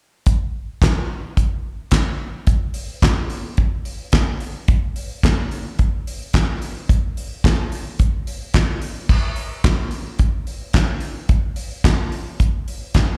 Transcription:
0.26 kick medium
0.26 closed hi-hat medium
0.82 kick loud
0.82 snare loud
0.82 clap medium
0.82 closed hi-hat medium
1.37 kick medium
1.37 closed hi-hat medium
1.91 kick medium
1.91 snare loud
1.91 clap medium
1.91 closed hi-hat medium
2.47 kick loud
2.47 closed hi-hat medium
2.74 open hi-hat medium
3.02 kick loud
3.02 snare loud
3.02 clap medium
3.02 closed hi-hat medium
3.30 open hi-hat medium
3.57 kick medium
3.57 closed hi-hat soft
3.85 open hi-hat medium
4.12 kick medium
4.12 snare medium
4.12 clap medium
4.12 closed hi-hat medium
4.40 open hi-hat medium
4.68 kick loud
4.68 closed hi-hat medium
4.96 open hi-hat medium
5.23 kick loud
5.23 snare loud
5.23 clap medium
5.23 closed hi-hat medium
5.51 open hi-hat medium
5.79 kick medium
5.79 closed hi-hat medium
6.07 open hi-hat medium
6.33 kick loud
6.33 snare loud
6.33 clap medium
6.33 closed hi-hat medium
6.62 open hi-hat medium
6.89 kick loud
6.89 closed hi-hat medium
7.17 open hi-hat medium
7.44 kick loud
7.44 snare loud
7.44 clap medium
7.44 closed hi-hat medium
7.72 open hi-hat medium
7.99 kick medium
7.99 closed hi-hat soft
8.27 open hi-hat medium
8.54 kick medium
8.54 snare loud
8.54 clap medium
8.54 closed hi-hat medium
8.82 open hi-hat medium
9.09 kick loud
9.09 crash medium
9.36 open hi-hat medium
9.64 kick loud
9.64 snare loud
9.64 clap medium
9.64 closed hi-hat medium
9.91 open hi-hat medium
10.19 kick loud
10.19 closed hi-hat medium
10.47 open hi-hat medium
10.73 kick loud
10.73 snare loud
10.73 clap medium
10.73 closed hi-hat medium
11.00 open hi-hat medium
11.29 kick loud
11.29 closed hi-hat medium
11.56 open hi-hat medium
11.84 kick loud
11.84 snare loud
11.84 clap medium
11.84 closed hi-hat medium
12.12 open hi-hat medium
12.40 kick medium
12.40 closed hi-hat medium
12.68 open hi-hat medium
12.94 kick loud
12.94 snare loud
12.94 clap medium
12.94 closed hi-hat medium

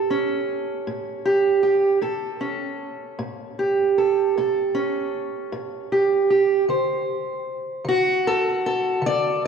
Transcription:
0.00 0.40 A2 medium
0.00 1.24 G4 medium
0.00 1.63 A4 medium
0.10 1.99 C#4 medium
0.87 1.57 A2 medium
1.25 1.62 G4 medium
1.63 1.98 G4 soft
2.01 2.72 A2 medium
2.01 3.98 A4 medium
2.41 4.73 C#4 medium
3.19 3.89 A2 medium
3.59 5.91 G4 medium
3.98 4.38 A4 medium
4.37 5.07 A2 medium
4.37 6.30 A4 medium
4.75 6.64 C#4 medium
5.52 6.22 A2 medium
5.92 6.29 G4 medium
6.30 6.64 G4 medium
6.68 7.39 D3 medium
6.68 7.88 C5 soft
7.85 8.55 D3 medium
7.85 9.03 F#4 medium
8.27 8.43 A4 medium
8.66 9.47 A4 medium
9.02 9.47 D3 medium
9.06 9.43 D5 loud

